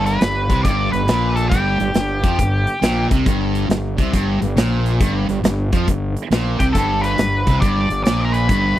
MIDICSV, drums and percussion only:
0, 0, Header, 1, 2, 480
1, 0, Start_track
1, 0, Tempo, 435730
1, 1671, Time_signature, 4, 2, 24, 8
1, 9684, End_track
2, 0, Start_track
2, 0, Title_t, "Drums"
2, 70, Note_on_c, 9, 42, 52
2, 180, Note_off_c, 9, 42, 0
2, 230, Note_on_c, 9, 42, 69
2, 243, Note_on_c, 9, 38, 103
2, 341, Note_off_c, 9, 42, 0
2, 353, Note_off_c, 9, 38, 0
2, 547, Note_on_c, 9, 36, 90
2, 549, Note_on_c, 9, 42, 51
2, 658, Note_off_c, 9, 36, 0
2, 659, Note_off_c, 9, 42, 0
2, 713, Note_on_c, 9, 36, 94
2, 716, Note_on_c, 9, 42, 67
2, 824, Note_off_c, 9, 36, 0
2, 826, Note_off_c, 9, 42, 0
2, 1029, Note_on_c, 9, 42, 54
2, 1139, Note_off_c, 9, 42, 0
2, 1188, Note_on_c, 9, 42, 74
2, 1201, Note_on_c, 9, 38, 100
2, 1299, Note_off_c, 9, 42, 0
2, 1311, Note_off_c, 9, 38, 0
2, 1506, Note_on_c, 9, 42, 58
2, 1617, Note_off_c, 9, 42, 0
2, 1669, Note_on_c, 9, 36, 100
2, 1670, Note_on_c, 9, 42, 76
2, 1779, Note_off_c, 9, 36, 0
2, 1780, Note_off_c, 9, 42, 0
2, 1981, Note_on_c, 9, 42, 53
2, 2091, Note_off_c, 9, 42, 0
2, 2142, Note_on_c, 9, 42, 78
2, 2154, Note_on_c, 9, 38, 90
2, 2252, Note_off_c, 9, 42, 0
2, 2264, Note_off_c, 9, 38, 0
2, 2461, Note_on_c, 9, 42, 54
2, 2464, Note_on_c, 9, 36, 91
2, 2571, Note_off_c, 9, 42, 0
2, 2574, Note_off_c, 9, 36, 0
2, 2631, Note_on_c, 9, 36, 77
2, 2632, Note_on_c, 9, 42, 76
2, 2741, Note_off_c, 9, 36, 0
2, 2742, Note_off_c, 9, 42, 0
2, 2942, Note_on_c, 9, 42, 54
2, 3052, Note_off_c, 9, 42, 0
2, 3111, Note_on_c, 9, 42, 77
2, 3123, Note_on_c, 9, 38, 100
2, 3222, Note_off_c, 9, 42, 0
2, 3234, Note_off_c, 9, 38, 0
2, 3427, Note_on_c, 9, 36, 88
2, 3427, Note_on_c, 9, 42, 56
2, 3537, Note_off_c, 9, 36, 0
2, 3537, Note_off_c, 9, 42, 0
2, 3594, Note_on_c, 9, 36, 96
2, 3595, Note_on_c, 9, 42, 74
2, 3704, Note_off_c, 9, 36, 0
2, 3705, Note_off_c, 9, 42, 0
2, 3912, Note_on_c, 9, 42, 53
2, 4022, Note_off_c, 9, 42, 0
2, 4078, Note_on_c, 9, 42, 71
2, 4090, Note_on_c, 9, 38, 101
2, 4188, Note_off_c, 9, 42, 0
2, 4200, Note_off_c, 9, 38, 0
2, 4386, Note_on_c, 9, 42, 52
2, 4388, Note_on_c, 9, 36, 90
2, 4496, Note_off_c, 9, 42, 0
2, 4499, Note_off_c, 9, 36, 0
2, 4554, Note_on_c, 9, 36, 90
2, 4555, Note_on_c, 9, 42, 71
2, 4664, Note_off_c, 9, 36, 0
2, 4665, Note_off_c, 9, 42, 0
2, 4869, Note_on_c, 9, 42, 53
2, 4979, Note_off_c, 9, 42, 0
2, 5036, Note_on_c, 9, 42, 79
2, 5048, Note_on_c, 9, 38, 107
2, 5146, Note_off_c, 9, 42, 0
2, 5158, Note_off_c, 9, 38, 0
2, 5352, Note_on_c, 9, 42, 52
2, 5462, Note_off_c, 9, 42, 0
2, 5512, Note_on_c, 9, 42, 73
2, 5515, Note_on_c, 9, 36, 102
2, 5622, Note_off_c, 9, 42, 0
2, 5625, Note_off_c, 9, 36, 0
2, 5827, Note_on_c, 9, 42, 56
2, 5937, Note_off_c, 9, 42, 0
2, 5992, Note_on_c, 9, 42, 74
2, 6005, Note_on_c, 9, 38, 99
2, 6103, Note_off_c, 9, 42, 0
2, 6115, Note_off_c, 9, 38, 0
2, 6306, Note_on_c, 9, 42, 58
2, 6309, Note_on_c, 9, 36, 89
2, 6417, Note_off_c, 9, 42, 0
2, 6419, Note_off_c, 9, 36, 0
2, 6474, Note_on_c, 9, 42, 80
2, 6476, Note_on_c, 9, 36, 77
2, 6584, Note_off_c, 9, 42, 0
2, 6586, Note_off_c, 9, 36, 0
2, 6792, Note_on_c, 9, 42, 58
2, 6902, Note_off_c, 9, 42, 0
2, 6957, Note_on_c, 9, 42, 77
2, 6969, Note_on_c, 9, 38, 98
2, 7067, Note_off_c, 9, 42, 0
2, 7079, Note_off_c, 9, 38, 0
2, 7271, Note_on_c, 9, 36, 88
2, 7273, Note_on_c, 9, 42, 58
2, 7381, Note_off_c, 9, 36, 0
2, 7383, Note_off_c, 9, 42, 0
2, 7435, Note_on_c, 9, 42, 76
2, 7436, Note_on_c, 9, 36, 94
2, 7546, Note_off_c, 9, 36, 0
2, 7546, Note_off_c, 9, 42, 0
2, 7751, Note_on_c, 9, 42, 52
2, 7861, Note_off_c, 9, 42, 0
2, 7911, Note_on_c, 9, 42, 69
2, 7923, Note_on_c, 9, 38, 96
2, 8021, Note_off_c, 9, 42, 0
2, 8033, Note_off_c, 9, 38, 0
2, 8225, Note_on_c, 9, 42, 55
2, 8228, Note_on_c, 9, 36, 91
2, 8335, Note_off_c, 9, 42, 0
2, 8339, Note_off_c, 9, 36, 0
2, 8394, Note_on_c, 9, 36, 94
2, 8396, Note_on_c, 9, 42, 73
2, 8504, Note_off_c, 9, 36, 0
2, 8506, Note_off_c, 9, 42, 0
2, 8706, Note_on_c, 9, 42, 52
2, 8816, Note_off_c, 9, 42, 0
2, 8874, Note_on_c, 9, 42, 75
2, 8886, Note_on_c, 9, 38, 103
2, 8984, Note_off_c, 9, 42, 0
2, 8996, Note_off_c, 9, 38, 0
2, 9188, Note_on_c, 9, 42, 49
2, 9298, Note_off_c, 9, 42, 0
2, 9353, Note_on_c, 9, 42, 71
2, 9354, Note_on_c, 9, 36, 95
2, 9464, Note_off_c, 9, 36, 0
2, 9464, Note_off_c, 9, 42, 0
2, 9684, End_track
0, 0, End_of_file